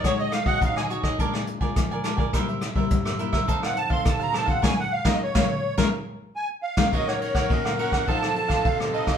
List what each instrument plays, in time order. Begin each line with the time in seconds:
Already playing: nylon-string guitar D#4 F#4 C#5
0.04 nylon-string guitar G#3, cavaquinho F#4 G#4 C#5 D#5, accordion C#5, kick, cross-stick, closed hi-hat
0.19 cavaquinho G#4 C#5 D#5, accordion D#5, closed hi-hat
0.32 accordion F5, muted cavaquinho stroke, cross-stick, closed hi-hat
0.46 nylon-string guitar D#4 F#4 C#5, cavaquinho G#4 C#5 D#5, accordion F#5, kick, closed hi-hat
0.61 nylon-string guitar D#3, accordion F5, kick, closed hi-hat
0.76 cavaquinho G#4 C#5 D#5, accordion G#5, cross-stick
0.90 nylon-string guitar D#4 F#4 C#5, cavaquinho F#4 G#4 C#5 D#5, closed hi-hat
1.03 cavaquinho G#4 C#5 D#5, kick, cross-stick
1.19 nylon-string guitar A#2 G#3 D4 F4, cavaquinho D4 A#4 D5 G#5, kick, closed hi-hat
1.34 cavaquinho A#4 D5 G#5, cross-stick
1.47 muted cavaquinho stroke, closed hi-hat
1.61 nylon-string guitar G#3 D4 F4, cavaquinho A#4 D5 G#5, kick, closed hi-hat
1.76 nylon-string guitar F3, kick, cross-stick, closed hi-hat
1.91 cavaquinho A#4 D5 G#5, closed hi-hat
2.04 nylon-string guitar G#3 D4 F4, cavaquinho D4 A#4 D5 G#5, cross-stick, closed hi-hat
2.17 cavaquinho A#4 D5 G#5, kick
2.33 nylon-string guitar C3 G3 A#3 E4, cavaquinho E4 A#4 C5 E5, kick, cross-stick, closed hi-hat
2.48 cavaquinho A#4 C5 E5, closed hi-hat
2.61 muted cavaquinho stroke, cross-stick, closed hi-hat
2.76 nylon-string guitar G3 A#3 E4, cavaquinho A#4 C5 E5, kick
2.90 nylon-string guitar G2, kick, closed hi-hat
3.05 cavaquinho A#4 C5 E5, cross-stick, closed hi-hat
3.19 nylon-string guitar G3 A#3 E4, cavaquinho E4 A#4 C5 E5, closed hi-hat
3.33 cavaquinho A#4 C5 E5, kick, cross-stick
3.48 nylon-string guitar F2 D#3 A3 C4, cavaquinho D#4 A4 C5 F5, kick, closed hi-hat
3.63 cavaquinho A4 C5 F5, accordion F#5, cross-stick
3.76 accordion A5, muted cavaquinho stroke, closed hi-hat
3.90 nylon-string guitar D#3 A3 C4, cavaquinho A4 C5 F5, accordion C6, kick
4.05 nylon-string guitar C3, accordion A5, kick, cross-stick, closed hi-hat
4.19 cavaquinho A4 C5 F5, accordion A#5, closed hi-hat
4.32 nylon-string guitar D#3 A3 C4, cavaquinho D#4 A4 C5 F5, accordion A5, cross-stick, closed hi-hat
4.46 cavaquinho A4 C5 F5, accordion F#5, kick, closed hi-hat
4.62 nylon-string guitar G#3 A#3 C#4, cavaquinho A#4 C#5 F5, accordion G#5, kick, snare
4.79 accordion F#5
4.92 accordion F5
5.05 nylon-string guitar G#3 A#3 C#4, cavaquinho A#4 C#5 F5, accordion D#5, kick, snare
5.23 accordion C#5
5.35 nylon-string guitar G#3 A#3 C#4, cavaquinho A#4 C#5 F5, kick, snare
5.78 nylon-string guitar G#3 A#3 C#4, cavaquinho A#4 C#5 F5, kick, snare
6.36 accordion G#5
6.62 accordion F5
6.77 nylon-string guitar G#3 A#3 C#4, cavaquinho A#4 C#5 F5, kick, snare
6.92 nylon-string guitar D#3 A#3 C#4 F#4, cavaquinho D#4 A#4 C#5 F#5, clarinet A#4, accordion D#5, kick, ride
7.08 cavaquinho A#4 C#5 F#5, accordion C#5, cross-stick
7.20 accordion C#5, muted cavaquinho stroke, ride
7.34 cavaquinho A#4 C#5 F#5, kick, cross-stick, ride
7.50 nylon-string guitar A#2 A#3 C#4 F#4, accordion D#5, kick, ride
7.64 cavaquinho A#4 C#5 F#5, accordion F5, cross-stick
7.78 nylon-string guitar A#3 C#4 F#4, cavaquinho D#4 A#4 C#5 F#5, accordion F#5, ride
7.92 cavaquinho A#4 C#5 F#5, kick, cross-stick, ride
8.07 nylon-string guitar F3 C4 D#4 A4, cavaquinho D#4 A4 C5 F5, clarinet A4, accordion A5, kick, ride
8.22 cavaquinho A4 C5, cross-stick
8.35 nylon-string guitar C4 D#4 A4, muted cavaquinho stroke, ride
8.48 cavaquinho A4 C5 F5, kick, cross-stick, ride
8.65 nylon-string guitar C3, accordion F5, kick, ride
8.79 nylon-string guitar C4 D#4 A4, cavaquinho A4 C5 F5, cross-stick
8.93 cavaquinho D#4 A4 C5 F5, accordion D#5, ride
9.06 cavaquinho A4 C5 F5, kick, cross-stick, ride